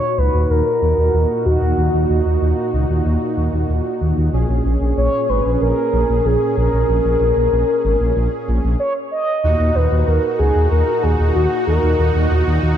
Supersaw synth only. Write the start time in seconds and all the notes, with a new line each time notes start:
Already playing: A#2 D#4 F#4
4.33 C#4 G#4
9.44 A#2 D#4 F#4